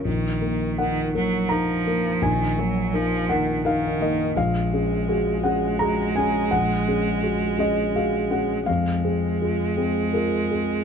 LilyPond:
<<
  \new Staff \with { instrumentName = "Grand piano" } { \time 3/4 \key ees \dorian \tempo 4 = 84 << { r4 ges''4 bes''4 | aes''4. ges''8 f''8 ees''8 | f''4. ges''8 bes''8 aes''8 | ges''4. ees''8 f''8 ges''8 |
f''2 bes'4 | } \\ { bes,,8 <bes bes'>8 <ees' bes'>8 <bes bes'>8 <ees' bes'>8 <bes bes'>8 | bes,,8 <bes bes'>8 <ees' bes'>8 <bes bes'>8 <ees' bes'>8 <bes bes'>8 | bes,,8 <des' aes'>8 <ges' aes'>8 <des' aes'>8 <ges' aes'>8 <des' aes'>8 | bes,,8 <des' aes'>8 <ges' aes'>8 <des' aes'>8 <ges' aes'>8 <des' aes'>8 |
f,8 <c' aes'>8 <f' aes'>8 <c' aes'>8 <f' aes'>8 <c' aes'>8 | } >> }
  \new Staff \with { instrumentName = "Cello" } { \clef bass \time 3/4 \key ees \dorian ees4 ees8 ges8 f4 | ees8 ges8 f8 ees8 ees4 | aes2.~ | aes2. |
aes2. | }
>>